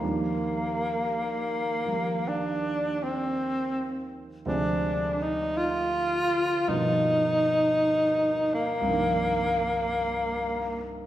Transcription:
0.00 4.45 D#2 soft
0.00 4.45 D#3 soft
0.00 1.84 F3 soft
0.00 1.85 G3 soft
0.00 2.30 A#3 medium
0.04 4.47 D4 soft
1.86 4.44 F3 soft
1.86 4.46 G3 soft
1.86 4.47 A#3 soft
1.86 4.47 F4 soft
2.28 3.05 D4 medium
3.04 4.13 C4 medium
4.46 6.67 D2 soft
4.46 6.67 C3 soft
4.46 6.67 F3 soft
4.46 6.67 G#3 soft
4.46 6.68 C4 soft
4.46 5.24 D4 medium
5.22 5.59 D#4 medium
5.57 6.70 F4 medium
6.68 8.82 G2 soft
6.68 8.88 B2 soft
6.68 8.84 D#3 soft
6.68 8.86 F3 soft
6.68 8.88 A#3 soft
6.68 8.55 D#4 medium
8.54 10.90 A#3 medium
8.81 11.06 C2 soft
8.81 11.06 G2 soft
8.86 11.06 D#3 soft
8.86 11.06 F3 soft
8.90 11.06 A#3 soft
8.90 11.06 D4 soft

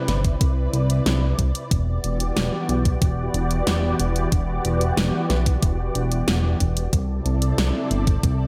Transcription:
0.00 1.67 C3 medium
0.00 1.67 C4 medium
0.00 1.67 E4 medium
0.00 1.69 B4 medium
0.00 6.89 D5 medium
0.08 0.36 G1 loud
0.08 snare medium
0.08 closed hi-hat medium
0.25 kick medium
0.25 closed hi-hat medium
0.41 0.68 C2 medium
0.41 kick loud
0.41 closed hi-hat medium
0.73 1.01 C2 loud
0.73 closed hi-hat medium
0.90 closed hi-hat medium
1.06 1.34 C2 loud
1.06 snare loud
1.06 closed hi-hat medium
1.39 1.52 C2 medium
1.39 kick medium
1.39 closed hi-hat medium
1.55 closed hi-hat medium
1.71 1.99 E1 loud
1.71 6.89 E3 medium
1.71 6.89 B3 medium
1.71 6.89 F#4 medium
1.71 6.89 G4 medium
1.71 kick loud
1.71 closed hi-hat medium
2.04 2.31 E1 medium
2.04 closed hi-hat medium
2.20 closed hi-hat medium
2.36 2.50 E1 loud
2.36 snare loud
2.36 closed hi-hat loud
2.69 2.97 B1 loud
2.69 closed hi-hat medium
2.85 kick loud
2.85 closed hi-hat medium
3.02 3.29 E1 medium
3.02 kick loud
3.02 closed hi-hat medium
3.34 3.62 E1 medium
3.34 closed hi-hat medium
3.51 closed hi-hat medium
3.67 3.94 E1 medium
3.67 snare loud
3.67 closed hi-hat medium
4.00 4.27 E1 medium
4.00 closed hi-hat medium
4.16 closed hi-hat medium
4.32 4.60 E1 loud
4.32 kick loud
4.32 closed hi-hat medium
4.65 4.92 E1 medium
4.65 closed hi-hat medium
4.81 closed hi-hat medium
4.97 5.11 E1 loud
4.97 snare loud
4.97 closed hi-hat medium
5.30 5.57 B1 loud
5.30 snare medium
5.30 closed hi-hat medium
5.46 kick loud
5.46 closed hi-hat medium
5.63 5.90 E1 medium
5.63 kick loud
5.63 closed hi-hat medium
5.95 6.23 E1 medium
5.95 closed hi-hat medium
6.12 closed hi-hat medium
6.28 6.55 E1 medium
6.28 snare loud
6.28 closed hi-hat medium
6.60 6.88 E1 medium
6.60 kick medium
6.60 closed hi-hat medium
6.77 closed hi-hat medium
6.93 7.21 C2 loud
6.93 8.47 C3 medium
6.93 8.47 C4 medium
6.93 8.47 E4 medium
6.93 8.47 A4 medium
6.93 8.47 D5 medium
6.93 kick loud
6.93 closed hi-hat medium
7.26 7.53 C2 medium
7.26 closed hi-hat medium
7.42 closed hi-hat medium
7.58 7.72 C2 loud
7.58 snare loud
7.58 closed hi-hat loud
7.91 8.18 G1 loud
7.91 closed hi-hat medium
8.07 kick loud
8.07 closed hi-hat medium
8.23 8.47 C2 medium
8.23 kick loud
8.23 closed hi-hat medium

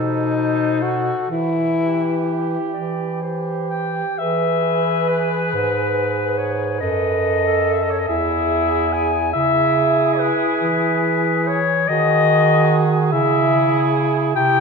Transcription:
0.00 1.12 B2 medium
0.00 0.83 D#4 medium
0.00 0.34 A4 soft
0.00 0.34 C5 soft
0.34 1.28 A4 soft
0.34 1.27 C5 soft
0.82 1.30 F#4 medium
1.29 2.58 E3 medium
1.29 2.73 E4 medium
1.78 3.20 G4 soft
1.78 2.63 B4 soft
2.73 4.03 E3 soft
2.73 3.23 D5 medium
3.22 4.18 G4 soft
3.22 3.70 C5 soft
3.70 4.20 G5 medium
4.18 5.55 E3 medium
4.18 6.78 G#4 medium
4.18 6.78 B4 soft
4.18 5.11 E5 medium
5.09 6.39 B4 medium
5.54 6.83 G#2 soft
6.37 6.79 C#5 medium
6.80 8.08 F#2 medium
6.80 8.06 A4 soft
6.80 7.45 B4 soft
6.80 7.74 D#5 medium
7.46 8.08 A4 soft
7.72 7.84 E5 medium
7.82 7.92 D#5 medium
7.91 8.01 C#5 medium
7.99 8.09 D#5 medium
8.07 9.33 E2 medium
8.07 9.33 E4 medium
8.07 9.18 G#4 medium
8.07 8.94 E5 medium
8.93 9.33 G#5 medium
9.33 10.32 C#3 medium
9.33 11.58 E4 medium
9.33 11.59 G#4 medium
9.33 10.20 E5 medium
10.19 11.49 B4 medium
10.61 11.85 E3 medium
11.47 11.90 C#5 medium
11.88 13.14 D#3 medium
11.88 13.09 F#4 medium
11.88 13.09 G#4 medium
11.88 12.86 D#5 loud
13.12 14.35 C#3 medium
13.12 14.33 E4 medium
13.12 14.33 G#4 medium
13.12 13.90 E5 medium
14.34 14.60 C3 medium
14.34 14.60 E4 medium
14.34 14.60 G4 medium
14.34 14.60 G5 loud

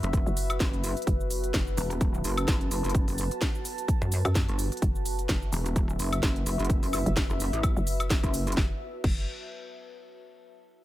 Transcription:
0.00 0.24 F#1 loud
0.00 8.53 F#4 medium
0.00 8.53 B4 medium
0.00 1.06 E5 medium
0.00 closed hi-hat medium
0.00 shaker soft
0.13 kick loud
0.13 closed hi-hat medium
0.13 shaker soft
0.27 0.59 F#1 loud
0.27 shaker soft
0.37 open hi-hat loud
0.37 shaker medium
0.50 closed hi-hat medium
0.50 high woodblock medium
0.50 shaker soft
0.60 0.95 F#1 loud
0.60 kick loud
0.60 snare loud
0.60 closed hi-hat medium
0.60 shaker soft
0.73 closed hi-hat soft
0.84 open hi-hat loud
0.84 shaker medium
0.97 closed hi-hat soft
0.97 shaker soft
1.02 closed hi-hat medium
1.07 1.52 F#1 loud
1.07 4.81 A5 medium
1.07 kick loud
1.07 closed hi-hat medium
1.07 shaker soft
1.20 shaker soft
1.30 open hi-hat loud
1.30 shaker medium
1.44 closed hi-hat medium
1.44 shaker soft
1.54 1.76 F#1 loud
1.54 kick loud
1.54 snare loud
1.54 closed hi-hat medium
1.54 shaker soft
1.67 shaker soft
1.77 2.23 E1 loud
1.77 open hi-hat loud
1.77 shaker medium
1.91 closed hi-hat medium
1.91 shaker soft
2.01 kick loud
2.01 closed hi-hat medium
2.01 shaker soft
2.14 shaker soft
2.24 2.46 F#1 loud
2.24 open hi-hat loud
2.24 shaker medium
2.38 closed hi-hat medium
2.38 high woodblock medium
2.38 shaker soft
2.48 2.70 F#1 loud
2.48 kick loud
2.48 snare loud
2.48 closed hi-hat medium
2.48 shaker soft
2.61 closed hi-hat soft
2.71 2.82 F#1 loud
2.71 open hi-hat loud
2.71 shaker medium
2.84 3.06 F#1 loud
2.84 closed hi-hat soft
2.84 shaker soft
2.89 closed hi-hat medium
2.95 kick loud
2.95 closed hi-hat medium
2.95 shaker soft
3.08 3.29 F#1 loud
3.08 open hi-hat medium
3.08 shaker soft
3.18 open hi-hat loud
3.18 shaker medium
3.31 closed hi-hat medium
3.31 shaker soft
3.41 kick loud
3.41 snare loud
3.41 closed hi-hat medium
3.41 shaker soft
3.55 shaker soft
3.65 open hi-hat loud
3.65 shaker medium
3.78 closed hi-hat medium
3.78 shaker soft
3.88 kick loud
3.88 closed hi-hat medium
3.88 shaker soft
4.02 4.23 F#2 loud
4.02 shaker soft
4.12 open hi-hat loud
4.12 shaker medium
4.25 4.46 F#2 loud
4.25 closed hi-hat medium
4.25 high woodblock medium
4.25 shaker soft
4.35 kick loud
4.35 snare loud
4.35 closed hi-hat medium
4.35 shaker soft
4.48 4.70 G1 loud
4.48 closed hi-hat soft
4.59 open hi-hat loud
4.59 shaker medium
4.72 closed hi-hat soft
4.72 shaker soft
4.77 closed hi-hat medium
4.82 5.27 F#1 medium
4.82 8.56 E5 medium
4.82 kick loud
4.82 closed hi-hat medium
4.82 shaker soft
4.95 shaker soft
5.06 open hi-hat loud
5.06 shaker medium
5.19 closed hi-hat medium
5.19 shaker soft
5.29 5.51 F#1 loud
5.29 kick loud
5.29 snare loud
5.29 closed hi-hat medium
5.29 shaker soft
5.42 shaker soft
5.52 5.98 E1 loud
5.52 open hi-hat loud
5.52 shaker medium
5.66 closed hi-hat medium
5.66 shaker soft
5.76 kick loud
5.76 closed hi-hat medium
5.76 shaker soft
5.89 shaker soft
5.99 6.21 F#1 loud
5.99 open hi-hat loud
5.99 shaker medium
6.13 closed hi-hat medium
6.13 high woodblock medium
6.13 shaker soft
6.23 6.45 F#1 loud
6.23 kick loud
6.23 snare loud
6.23 closed hi-hat medium
6.23 shaker soft
6.36 closed hi-hat soft
6.46 6.57 F#1 medium
6.46 open hi-hat loud
6.46 shaker medium
6.59 6.81 F#1 loud
6.59 closed hi-hat medium
6.59 shaker soft
6.65 closed hi-hat medium
6.70 kick loud
6.70 closed hi-hat medium
6.70 shaker soft
6.83 7.04 F#1 loud
6.83 open hi-hat medium
6.83 shaker soft
6.93 open hi-hat loud
6.93 high woodblock medium
6.93 shaker medium
7.06 7.28 F#1 loud
7.06 closed hi-hat medium
7.06 shaker soft
7.17 kick loud
7.17 snare loud
7.17 closed hi-hat medium
7.17 shaker soft
7.30 7.51 F#1 loud
7.30 shaker soft
7.40 open hi-hat loud
7.40 shaker medium
7.53 7.75 A1 loud
7.53 closed hi-hat medium
7.53 shaker soft
7.63 kick loud
7.63 closed hi-hat medium
7.63 high woodblock medium
7.63 shaker soft
7.77 8.21 F#1 loud
7.77 shaker soft
7.87 open hi-hat loud
7.87 shaker medium
8.00 closed hi-hat medium
8.00 high woodblock medium
8.00 shaker soft
8.10 kick loud
8.10 snare loud
8.10 closed hi-hat medium
8.10 shaker soft
8.23 8.56 F#1 loud
8.23 kick medium
8.23 closed hi-hat soft
8.23 shaker soft
8.34 open hi-hat loud
8.34 shaker medium
8.47 closed hi-hat medium
8.47 shaker soft
8.52 closed hi-hat medium
8.57 8.71 F#1 medium
8.57 kick loud
8.57 snare medium
9.04 9.26 F#1 loud
9.04 kick loud
9.04 crash medium

